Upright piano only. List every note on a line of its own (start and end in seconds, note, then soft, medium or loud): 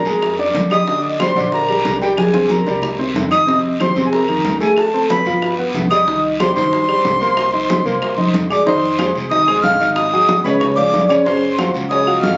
0.06 0.33 G#3 medium
0.06 0.33 G#4 medium
0.39 0.65 D4 medium
0.39 0.66 D5 medium
0.71 0.85 G3 medium
0.71 0.85 G4 medium
0.88 1.14 D3 medium
0.88 1.14 D4 medium
1.20 1.33 G3 medium
1.20 1.33 G4 medium
1.36 1.63 D3 medium
1.36 1.63 D4 medium
1.70 1.96 G3 medium
1.70 1.96 G4 medium
2.02 2.28 G3 medium
2.02 2.28 G4 medium
2.34 2.61 C4 medium
2.34 2.61 C5 medium
2.67 2.93 G3 medium
2.67 2.93 G4 medium
2.99 3.25 C4 medium
2.99 3.25 C5 medium
3.31 3.44 D#3 medium
3.31 3.45 D#4 medium
3.47 3.74 C3 medium
3.47 3.74 C4 medium
3.80 3.93 D#3 medium
3.80 3.93 D#4 medium
3.96 4.23 C3 medium
3.96 4.23 C4 medium
4.29 4.55 D#3 medium
4.29 4.55 D#4 medium
4.60 4.87 A3 medium
4.60 4.87 A4 medium
4.94 5.20 C4 medium
4.94 5.20 C5 medium
5.26 5.53 F3 medium
5.26 5.53 F4 medium
5.58 5.85 B3 medium
5.58 5.85 B4 medium
5.91 6.04 G3 medium
5.91 6.05 G4 medium
6.07 6.34 D#3 medium
6.07 6.34 D#4 medium
6.40 6.53 G3 medium
6.40 6.54 G4 medium
6.56 6.83 D#3 medium
6.56 6.83 D#4 medium
6.89 7.15 G3 medium
6.89 7.15 G4 medium
7.21 7.48 A#3 medium
7.21 7.48 A#4 medium
7.53 7.80 D#4 medium
7.53 7.80 D#5 medium
7.85 8.12 A#3 medium
7.85 8.12 A#4 medium
8.18 8.44 D#4 medium
8.18 8.45 D#5 medium
8.50 8.63 G#3 medium
8.50 8.64 G#4 medium
8.66 8.93 D#3 medium
8.66 8.93 D#4 medium
8.66 8.93 D#5 medium
8.99 9.26 G#3 medium
8.99 9.26 G#4 medium
8.99 9.26 C5 medium
9.30 9.44 D#3 medium
9.30 9.45 D#4 medium
9.30 9.45 D#5 medium
9.47 9.74 G#3 medium
9.47 9.74 G#4 medium
9.47 9.75 C5 medium
9.80 10.07 D#3 medium
9.80 10.07 D#4 medium
9.80 10.07 D#5 medium
10.13 10.39 F#3 medium
10.13 10.40 F#4 medium
10.13 10.40 G#4 medium
10.45 10.72 C#3 medium
10.45 10.72 C#4 medium
10.45 10.72 C#5 medium
10.77 11.04 F3 medium
10.77 11.04 F4 medium
10.77 11.04 G#4 medium
11.09 11.23 C#3 medium
11.09 11.23 C#4 medium
11.09 11.23 C#5 medium
11.26 11.53 C#3 medium
11.26 11.53 C#4 medium
11.26 11.53 C5 medium
11.58 11.85 F#3 medium
11.58 11.85 F4 medium
11.58 11.85 F#4 medium
11.90 12.04 C#3 medium
11.90 12.04 C#4 medium
11.90 12.04 C#5 medium
12.06 12.33 F#3 medium
12.06 12.34 F4 medium
12.06 12.34 F#4 medium